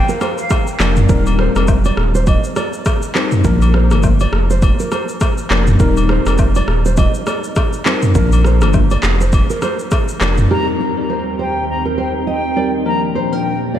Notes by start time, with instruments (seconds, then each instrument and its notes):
0.09 nylon-string guitar A#4, shaker
0.21 nylon-string guitar C5, cross-stick, high agogo, shaker
0.38 flute F5, shaker
0.50 kick, cross-stick, high agogo, low woodblock, shaker
0.67 shaker
0.79 sub bass F1, tine electric piano F3 A#3 D4 A#4, nylon-string guitar D5, cross-stick, clap, high agogo, shaker
0.96 mid tom, shaker
1.09 sub bass D#1, tine electric piano G3 C4 D#4 A#4, nylon-string guitar A#4, kick, shaker
1.26 high agogo, shaker
1.39 nylon-string guitar C5, cross-stick
1.55 sub bass F1, tine electric piano G3 C4 D#4 A#4, cross-stick, high agogo, shaker
1.68 kick, low woodblock, shaker
1.85 nylon-string guitar D5, high agogo, shaker
1.97 sub bass D#1, cross-stick
2.15 nylon-string guitar C5, shaker
2.27 nylon-string guitar D#5, kick, high agogo, shaker
2.44 shaker
2.56 nylon-string guitar D5, cross-stick, high agogo, shaker
2.73 shaker
2.85 kick, cross-stick, high agogo, low woodblock, shaker
3.02 shaker
3.15 tine electric piano G3 C4 D#4 A#4, nylon-string guitar C5, cross-stick, clap, high agogo
3.32 mid tom, shaker
3.44 sub bass A#1, tine electric piano F3 A#3 D4 A#4, nylon-string guitar A#4, kick, shaker
3.62 high agogo, shaker
3.74 nylon-string guitar C5, cross-stick
3.91 sub bass G1, tine electric piano F3 A#3 D4 A#4, cross-stick, high agogo, shaker
4.03 kick, low woodblock, shaker
4.20 nylon-string guitar D5, high agogo, shaker
4.33 sub bass F1, cross-stick
4.50 nylon-string guitar C5, shaker
4.62 kick, high agogo, shaker
4.79 nylon-string guitar A#4, shaker
4.92 nylon-string guitar C5, cross-stick, high agogo, shaker
5.09 shaker
5.21 kick, cross-stick, high agogo, low woodblock, shaker
5.38 shaker
5.50 sub bass F1, tine electric piano F3 A#3 D4 A#4, nylon-string guitar D5, cross-stick, clap, high agogo
5.67 mid tom, shaker
5.80 sub bass D#1, tine electric piano G3 C4 D#4 A#4, nylon-string guitar A#4, kick, shaker
5.97 high agogo, shaker
6.09 nylon-string guitar C5, cross-stick
6.26 sub bass F1, tine electric piano G3 C4 D#4 A#4, cross-stick, high agogo, shaker
6.38 kick, low woodblock, shaker
6.55 nylon-string guitar D5, high agogo, shaker
6.68 sub bass D#1, cross-stick
6.85 nylon-string guitar C5, shaker
6.97 nylon-string guitar D#5, kick, high agogo, shaker
7.14 shaker
7.27 nylon-string guitar D5, cross-stick, high agogo, shaker
7.44 shaker
7.56 kick, cross-stick, high agogo, low woodblock, shaker
7.73 shaker
7.85 tine electric piano G3 C4 D#4 A#4, nylon-string guitar C5, cross-stick, clap, high agogo
8.02 mid tom, shaker
8.15 sub bass A#1, tine electric piano F3 A#3 D4 A#4, nylon-string guitar A#4, kick, shaker
8.32 high agogo, shaker
8.44 nylon-string guitar C5, cross-stick, shaker
8.61 sub bass G1, tine electric piano F3 A#3 D4 A#4, cross-stick, high agogo, shaker
8.73 kick, low woodblock, shaker
8.90 nylon-string guitar D5, high agogo, shaker
9.03 sub bass F1, cross-stick, clap, shaker
9.21 nylon-string guitar C5, shaker
9.32 kick, high agogo, shaker
9.50 nylon-string guitar A#4, shaker
9.62 nylon-string guitar C5, cross-stick, high agogo, shaker
9.79 shaker
9.91 kick, cross-stick, high agogo, low woodblock, shaker
10.08 shaker
10.21 sub bass F1, tine electric piano F3 A#3 D4 A#4, nylon-string guitar D5, cross-stick, clap, high agogo, shaker
10.38 mid tom, shaker
10.50 ambient pad D#2 D#3 C4 G4, tine electric piano G3 C4 D#4 A#4, nylon-string guitar G4, flute A#5
10.80 nylon-string guitar A#4
10.97 tine electric piano G3 C4 D#4 A#4, flute A#5
11.10 nylon-string guitar C5
11.39 nylon-string guitar C5, flute G5
11.69 flute A#5
11.85 nylon-string guitar A#4
11.98 nylon-string guitar C5, flute G5
12.27 nylon-string guitar D#5, flute G5
12.56 tine electric piano G3 C4 D#4 A#4, nylon-string guitar D5
12.86 ambient pad A#2 F3 D4 A#4, tine electric piano F3 A#3 D4 A#4, flute A#5
13.15 nylon-string guitar C5
13.32 tine electric piano F3 A#3 D4 A#4, nylon-string guitar A#4, flute G5
13.74 nylon-string guitar D5, flute F5